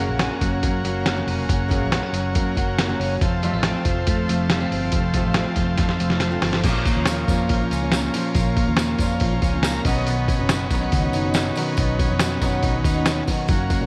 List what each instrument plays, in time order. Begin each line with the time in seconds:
Already playing: clean electric guitar F#2 F#3, transistor combo organ F#4 A#4 C#5
0.00 steel-string acoustic guitar F#2 C#3 F#3 A#3 C#4 F#4, clean electric guitar A#3
0.09 fingered electric bass A#1
0.19 clean electric guitar C#4, snare, closed hi-hat
0.30 steel-string acoustic guitar F#3 A#3 C#4 F#4
0.41 fingered electric bass F#1, clean electric guitar F#3, kick, closed hi-hat
0.63 fingered electric bass F#2, steel-string acoustic guitar F#3 A#3 C#4 F#4, clean electric guitar A#3, kick, closed hi-hat
0.84 fingered electric bass F#1, steel-string acoustic guitar F#3 A#3 C#4 F#4, clean electric guitar F#3, closed hi-hat
1.06 clean electric guitar A#3, snare, closed hi-hat
1.16 steel-string acoustic guitar F#2 C#3 F#3 A#3 C#4 F#4
1.27 fingered electric bass F1, clean electric guitar C#4, open hi-hat
1.48 fingered electric bass F#1, clean electric guitar F#2, steel-string acoustic guitar F#3 A#3 C#4 F#4, kick, closed hi-hat
1.68 steel-string acoustic guitar F#2 C#3 F#3 A#3 C#4 F#4, clean electric guitar A#3, kick, closed hi-hat
1.81 fingered electric bass A#1
1.92 clean electric guitar B3, snare, closed hi-hat
2.02 steel-string acoustic guitar F#3 A#3 C#4 F#4, clean electric guitar C#4
2.13 fingered electric bass F#1, clean electric guitar F#3, closed hi-hat
2.33 fingered electric bass F#2, steel-string acoustic guitar F#3 A#3 C#4 F#4, clean electric guitar A#3, kick, closed hi-hat
2.55 fingered electric bass F#1, steel-string acoustic guitar F#3 A#3 C#4 F#4, clean electric guitar F#3, kick, closed hi-hat
2.79 clean electric guitar A#3, snare, closed hi-hat
2.88 steel-string acoustic guitar F#2 C#3 F#3 A#3 C#4 F#4
3.00 fingered electric bass F#1, clean electric guitar C#4, open hi-hat
3.21 fingered electric bass F1, clean electric guitar F2, steel-string acoustic guitar F3 A3 C4 F4, transistor combo organ F4 A4 C5, kick, closed hi-hat
3.43 steel-string acoustic guitar F2 C3 F3 A3 C4 F4, clean electric guitar G3, closed hi-hat
3.53 fingered electric bass A1, clean electric guitar A3
3.63 clean electric guitar C4, snare, closed hi-hat
3.74 steel-string acoustic guitar F3 A3 C4 F4
3.85 fingered electric bass F1, clean electric guitar F3, kick, closed hi-hat
4.06 fingered electric bass F2, steel-string acoustic guitar F3 A3 C4 F4, clean electric guitar A3, kick, closed hi-hat
4.28 fingered electric bass F1, steel-string acoustic guitar F3 A3 C4 F4, clean electric guitar F3, closed hi-hat
4.50 clean electric guitar G3, snare, closed hi-hat
4.61 steel-string acoustic guitar F2 C3 F3 A3 C4 F4, clean electric guitar A3
4.71 fingered electric bass G1, clean electric guitar C4, open hi-hat
4.92 fingered electric bass F1, clean electric guitar F2, steel-string acoustic guitar F3 A3 C4 F4, kick, closed hi-hat
5.14 steel-string acoustic guitar F2 C3 F3 A3 C4 F4, clean electric guitar A3, kick, closed hi-hat
5.25 fingered electric bass A1
5.34 clean electric guitar C4, snare, closed hi-hat
5.47 steel-string acoustic guitar F3 A3 C4 F4
5.56 fingered electric bass F1, clean electric guitar F3, kick, snare, closed hi-hat
5.77 fingered electric bass F2, steel-string acoustic guitar F3 A3 C4 F4, clean electric guitar A3, kick, snare, closed hi-hat
5.89 snare
5.99 fingered electric bass F1, steel-string acoustic guitar F3 A3 C4 F4, clean electric guitar F3, closed hi-hat
6.10 snare
6.20 clean electric guitar A3, snare, closed hi-hat
6.31 steel-string acoustic guitar F2 C3 F3 A3 C4 F4
6.42 fingered electric bass G1, clean electric guitar C4, snare, open hi-hat
6.53 snare
6.63 fingered electric bass A#1, clean electric guitar A#2, steel-string acoustic guitar F3 A#3 C#4 F4, transistor combo organ F4 A#4 C#5, kick, open hi-hat, crash, tambourine
6.85 clean electric guitar A#3, kick, open hi-hat, tambourine
6.95 fingered electric bass D#2, steel-string acoustic guitar A#3 C#4 F4
7.06 clean electric guitar F3, snare, open hi-hat, tambourine
7.28 fingered electric bass F2, steel-string acoustic guitar A#2 F3 A#3 C#4 F4, clean electric guitar A#3, kick, open hi-hat, tambourine
7.49 fingered electric bass A#1, clean electric guitar F3, kick, open hi-hat
7.61 steel-string acoustic guitar A#3 C#4 F4
7.71 fingered electric bass C#2, clean electric guitar C#4, open hi-hat, tambourine
7.82 steel-string acoustic guitar A#3 C#4 F4
7.92 clean electric guitar A#3, snare, open hi-hat, tambourine
8.14 steel-string acoustic guitar A#2 F3 A#3 C#4 F4, clean electric guitar F3, open hi-hat, tambourine
8.35 fingered electric bass A#1, clean electric guitar A#2, steel-string acoustic guitar F3 A#3 C#4 F4, kick, open hi-hat, tambourine
8.57 clean electric guitar A#3, kick, open hi-hat
8.67 fingered electric bass D#2, steel-string acoustic guitar A#3 C#4 F4
8.77 clean electric guitar F3, snare, open hi-hat, tambourine
8.99 fingered electric bass F2, steel-string acoustic guitar A#2 F3 A#3 C#4 F4, clean electric guitar A#3, kick, open hi-hat, tambourine
9.20 fingered electric bass A#1, clean electric guitar F3, kick, open hi-hat
9.33 steel-string acoustic guitar A#3 C#4 F4
9.42 fingered electric bass C#2, clean electric guitar C#4, kick, open hi-hat, tambourine
9.54 steel-string acoustic guitar A#3 C#4 F4
9.63 clean electric guitar A#3, transistor combo organ A#5, snare, open hi-hat, tambourine
9.85 fingered electric bass B1, clean electric guitar B2, steel-string acoustic guitar B2 D#3 B3 C#4 F#4, transistor combo organ D#4 B4 C#5 D#5, kick, open hi-hat, tambourine
10.06 clean electric guitar B2, steel-string acoustic guitar D#3 B3 C#4 F#4, open hi-hat, tambourine
10.28 clean electric guitar C#4, kick, open hi-hat, tambourine
10.38 fingered electric bass F#1, steel-string acoustic guitar B3 C#4 F#4
10.49 clean electric guitar F#3, snare, open hi-hat, tambourine
10.71 fingered electric bass B1, steel-string acoustic guitar B2 D#3 B3 C#4 F#4, clean electric guitar B3, kick, open hi-hat, tambourine
10.81 clean electric guitar C#4
10.92 fingered electric bass C#2, clean electric guitar D#3, kick, open hi-hat, tambourine
11.04 steel-string acoustic guitar B3 C#4 F#4
11.13 fingered electric bass F#1, clean electric guitar D#4, open hi-hat, tambourine
11.24 steel-string acoustic guitar B3 C#4 F#4
11.34 clean electric guitar C#4, snare, open hi-hat, tambourine
11.56 steel-string acoustic guitar B2 D#3 B3 C#4 F#4, clean electric guitar F#3, open hi-hat, tambourine
11.77 fingered electric bass B1, clean electric guitar B2, steel-string acoustic guitar D#3 B3 C#4 F#4, kick, open hi-hat, tambourine
11.99 clean electric guitar C#4, kick, open hi-hat, tambourine
12.09 fingered electric bass F2, steel-string acoustic guitar B3 C#4 F#4
12.20 clean electric guitar F#3, snare, open hi-hat, tambourine
12.41 fingered electric bass F#2, steel-string acoustic guitar B2 D#3 B3 C#4 F#4, clean electric guitar C#4, kick, snare, open hi-hat, tambourine
12.63 fingered electric bass B1, clean electric guitar D#3, kick, open hi-hat, tambourine
12.75 steel-string acoustic guitar B3 C#4 F#4
12.84 fingered electric bass D#2, clean electric guitar D#4, kick, open hi-hat, tambourine
12.96 steel-string acoustic guitar B3 C#4 F#4
13.06 clean electric guitar C#4, snare, open hi-hat, tambourine
13.27 steel-string acoustic guitar B2 D#3 B3 C#4 F#4, clean electric guitar F#3, kick, open hi-hat, tambourine
13.48 fingered electric bass F#1, clean electric guitar F#2, steel-string acoustic guitar F#3 A#3 C#4, transistor combo organ F#4 A#4 C#5, kick, open hi-hat, tambourine
13.52 steel-string acoustic guitar F#4
13.70 clean electric guitar A#3, kick, open hi-hat, tambourine
13.81 fingered electric bass B1, steel-string acoustic guitar A#3 C#4 F#4